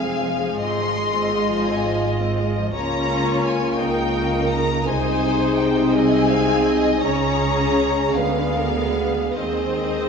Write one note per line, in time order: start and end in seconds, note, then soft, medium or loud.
0.00 0.56 F1 soft
0.00 0.56 F2 medium
0.00 2.58 G#3 medium
0.00 0.56 C4 medium
0.00 0.56 G#4 soft
0.00 0.57 F5 medium
0.00 0.60 G#5 medium
0.07 0.24 C4 soft
0.24 0.42 G#3 medium
0.42 0.60 F3 medium
0.60 2.71 G#1 medium
0.60 2.70 G#2 medium
0.60 0.77 C3 medium
0.60 2.73 F4 medium
0.60 2.58 F4 medium
0.60 2.70 D#5 medium
0.60 1.65 C6 medium
0.78 0.96 F3 medium
0.96 1.14 G#3 medium
1.14 1.32 C4 medium
1.32 1.50 G#3 medium
1.50 1.68 F3 medium
1.67 1.85 C3 medium
1.67 2.03 G#5 medium
1.86 2.03 F3 medium
2.03 2.21 G#3 medium
2.21 2.39 C4 medium
2.39 2.57 G#3 medium
2.57 2.74 F3 medium
2.74 3.75 C#2 medium
2.74 3.76 C#3 medium
2.74 4.82 A#3 medium
2.74 3.76 C#4 medium
2.74 3.76 F4 medium
2.74 4.82 F4 medium
2.74 3.78 C#5 medium
2.74 3.40 A#5 loud
3.45 3.80 G#5 medium
3.79 4.83 C#2 medium
3.79 4.84 C#3 medium
3.79 4.84 D#4 medium
3.79 4.85 A#4 medium
3.79 4.84 A#4 medium
3.79 4.50 G5 medium
4.50 4.86 A#5 medium
4.85 7.03 C2 medium
4.85 7.03 C3 medium
4.85 9.33 G#3 medium
4.85 5.90 D#4 medium
4.85 7.03 D#4 medium
4.85 5.91 G#4 medium
4.85 5.92 C5 medium
4.85 5.57 G#5 medium
5.57 5.92 G5 medium
5.92 7.02 C4 medium
5.92 7.00 G#4 medium
5.92 6.28 D#5 medium
5.92 7.03 G#5 loud
6.30 6.66 F5 medium
6.66 7.02 D#5 medium
7.02 8.12 C#2 medium
7.02 8.12 C#3 medium
7.02 8.12 C#4 medium
7.02 8.16 C#4 medium
7.02 8.12 G#4 medium
7.02 8.16 C#5 medium
7.02 8.13 A#5 loud
8.15 9.37 D2 medium
8.15 9.37 D3 medium
8.15 9.37 B3 medium
8.15 9.37 B3 soft
8.15 9.35 G#4 medium
8.15 8.55 B4 medium
8.15 9.37 F5 medium
8.54 8.95 A#4 medium
8.95 9.37 B4 medium
9.37 10.09 D#2 medium
9.37 10.09 D#3 medium
9.37 10.09 G#3 medium
9.37 10.09 C4 medium
9.37 10.09 G#4 medium
9.37 10.09 C5 medium
9.37 10.09 D#5 medium